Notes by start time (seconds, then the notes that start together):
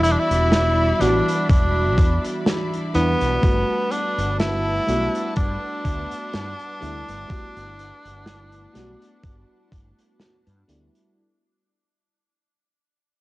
Already playing: E1 E3 G3 B3 D4 E4 F#4 D5 E5 B5
0.04 E4, closed hi-hat
0.12 D4
0.20 E4
0.31 E1, closed hi-hat
0.52 snare, closed hi-hat
0.99 A1 E3 G3 B3 D4 F#4, snare, closed hi-hat
1.29 closed hi-hat
1.50 E1 D4, kick, closed hi-hat
1.98 E2, kick, closed hi-hat
2.24 closed hi-hat
2.46 snare, closed hi-hat
2.73 closed hi-hat
2.94 E2 E3 G3 B3 D4 E4, closed hi-hat
3.21 B1, closed hi-hat
3.41 G1 G3 A3 B3 D4 F#4 B4 F#5 A5, kick, closed hi-hat
3.91 D4, closed hi-hat
4.18 G1, closed hi-hat
4.40 E4, snare, closed hi-hat
4.86 B1 G3 A3 B3 D4 F#4, closed hi-hat
5.15 closed hi-hat
5.36 G2 D4, kick, closed hi-hat
5.85 D2, kick, closed hi-hat
6.11 closed hi-hat
6.33 G2, snare, closed hi-hat
6.59 closed hi-hat
6.80 D2 G3 A3 B3 D4 E4, closed hi-hat
7.08 G1, closed hi-hat
7.28 G3 A3 B3 D4 F#4, kick, closed hi-hat
7.57 G1, closed hi-hat
7.79 closed hi-hat
8.05 G1, closed hi-hat
8.26 snare, closed hi-hat
8.52 closed hi-hat
8.74 B1 G3 A3 B3 D4 F#4, snare, closed hi-hat
9.02 closed hi-hat
9.23 G1, kick, closed hi-hat
9.72 G1, kick, closed hi-hat
9.99 closed hi-hat
10.20 snare, closed hi-hat
10.47 G2, closed hi-hat
10.68 D2 G3 A3 B3 D4 E4, closed hi-hat
10.95 closed hi-hat